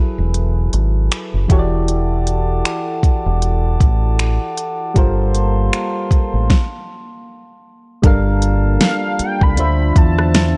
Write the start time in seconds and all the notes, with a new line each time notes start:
Already playing: F#3 E4 G#4 A4 B4
0.18 E1
0.34 closed hi-hat
0.73 G#1, closed hi-hat
1.12 finger snap, closed hi-hat
1.34 F#1
1.48 E1 E3 E4 F#4 G4 A4, kick, closed hi-hat
1.52 C#5
1.59 D5
1.88 A4 F#5 A5 D6, closed hi-hat
2.27 closed hi-hat
2.65 finger snap, closed hi-hat
3.03 muted fingered electric bass stroke, kick, closed hi-hat
3.26 E1
3.42 closed hi-hat
3.80 A1, kick, closed hi-hat
4.19 finger snap, closed hi-hat
4.57 closed hi-hat
4.94 G1 G3 A#3 F4 A4 A#4 F5 A5 C6, kick, closed hi-hat
4.98 C5
5.35 closed hi-hat
5.73 finger snap, closed hi-hat
6.11 muted fingered electric bass stroke, kick, closed hi-hat
6.34 A1
6.50 kick, snare
8.02 G1 G3 A#3 D4 F4 A4 A#4 A5, kick, closed hi-hat
8.07 F5
8.42 closed hi-hat
8.81 F5, snare, closed hi-hat
9.19 G5, muted fingered electric bass stroke, closed hi-hat
9.41 C2 B5, kick
9.56 D2 D3 D4 F4 C5 E5, closed hi-hat
9.60 E5
9.96 E2 A5, kick, closed hi-hat
10.19 cross-stick
10.34 snare, closed hi-hat